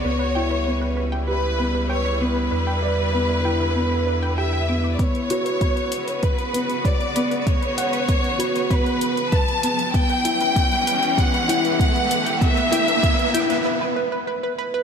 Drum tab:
HH |----------------|----------------|xxxxxxxxxxxxxxxx|xxxxxxxxxxxxxxxx|
BD |----------------|----------------|o---o---o---o---|o---o---o---o---|

HH |xxxxxxxxxxxxxxxx|xxxxxxxx--------|
BD |o---o---o---o---|o---o-----------|